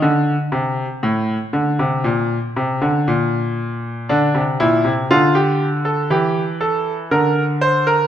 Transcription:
<<
  \new Staff \with { instrumentName = "Grand piano" } { \time 4/4 \key d \phrygian \tempo 4 = 60 d8 c8 a,8 d16 c16 bes,8 c16 d16 bes,4 | d'8 e'8 f'16 g'8 a'16 g'8 a'8 bes'8 c''16 bes'16 | }
  \new Staff \with { instrumentName = "Grand piano" } { \clef bass \time 4/4 \key d \phrygian r1 | d16 c16 bes,16 c16 d4 e4 d4 | }
>>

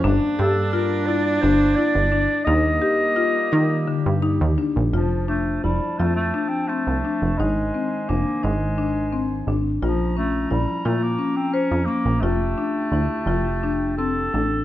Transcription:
<<
  \new Staff \with { instrumentName = "Marimba" } { \time 7/8 \key f \major \tempo 4 = 86 d'8 g'8 f'8 e'8 d'8 e'8 d'8 | ees'8 g'8 f'8 ees'8 d8 ees'8 d'8 | f'8 d'8 e'8 f'8 d'8 c'8 d'8 | ees'8 c'8 d'8 ees'8 d'8 c'8 d'8 |
f'8 des'8 e'8 f'8 des'8 c''8 des'8 | f'8 d'8 e'8 f'8 d'8 c'8 d'8 | }
  \new Staff \with { instrumentName = "Woodwind section" } { \time 7/8 \key f \major << { <g bes>2.~ <g bes>8 | <g g'>2.~ <g g'>8 | <f a''>2.~ <f a''>8 | <ees aes''>2.~ <ees aes''>8 |
<f bes''>2.~ <f bes''>8 | <g' a''>2.~ <g' a''>8 | } \\ { d'2.~ d'8 | bes2.~ bes8 | c''2.~ c''8~ | c''2.~ c''8 |
des'2.~ des'8 | g''2.~ g''8 | } >> }
  \new Staff \with { instrumentName = "Viola" } { \time 7/8 \key f \major d'2.~ d'8 | bes2. r8 | r2. r8 | r2. r8 |
r2. r8 | r2. r8 | }
  \new Staff \with { instrumentName = "Clarinet" } { \time 7/8 \key f \major r8 a'8 bes'8 d''8 c''8 d''4 | ees''2~ ees''8 r4 | f8 a8 g8 a16 a8 c'16 a4 | aes4 bes8 aes4. r8 |
f8 a8 g8 a16 bes8 c'16 des'8 bes8 | a2~ a8 a'4 | }
  \new Staff \with { instrumentName = "Analog synth bass" } { \clef bass \time 7/8 \key f \major g,,16 r16 g,4. g,,8 r16 g,,8 r16 | ees,8 r4 ees8 r16 g,8 ees,16 r16 bes,,16 | f,,4 f,,16 r16 f,8 r8. c,16 r16 f,,16 | aes,,8 r8 f,,16 r16 aes,,4. aes,,8 |
bes,,4 bes,,16 r16 bes,8 r8. f,16 r16 bes,,16 | f,,8 r8 d,16 r16 f,,4. a,,8 | }
>>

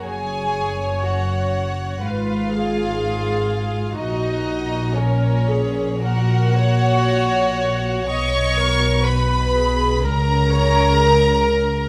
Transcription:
<<
  \new Staff \with { instrumentName = "Violin section" } { \time 4/4 \key fis \major \tempo 4 = 61 gis''4 fis''4 eis''2 | dis''4 cis''4 fis''2 | cis'''4 b''4 ais''2 | }
  \new Staff \with { instrumentName = "Viola section" } { \time 4/4 \key fis \major cis''2 b'8 gis'4. | fis'4 ais'8 gis'8 ais'8 cis''4. | dis''8 ais'8 b'8 gis'8 ais'8 cis''8 ais'4 | }
  \new Staff \with { instrumentName = "Violin section" } { \time 4/4 \key fis \major gis'4 fis'4 eis'2 | dis'4 cis'4 fis'2 | cis''4 b'4 ais'2 | }
  \new Staff \with { instrumentName = "Cello section" } { \clef bass \time 4/4 \key fis \major fis,2 gis,2 | ais,1 | b,2 cis2 | }
  \new Staff \with { instrumentName = "Double bass section" } { \clef bass \time 4/4 \key fis \major fis,,2 gis,,2 | ais,,1 | b,,2 cis,2 | }
>>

